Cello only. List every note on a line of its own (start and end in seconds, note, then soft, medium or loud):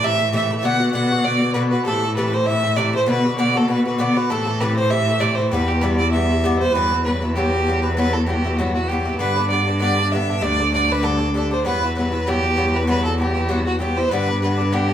0.00 0.64 A2 medium
0.63 1.88 B2 medium
1.87 3.09 A2 medium
3.08 4.32 B2 medium
4.31 5.53 A2 medium
5.51 6.72 E2 medium
6.75 9.22 E2 medium
9.20 10.44 G2 medium
10.43 11.66 D2 medium
11.65 14.12 E2 medium
14.11 14.94 G2 medium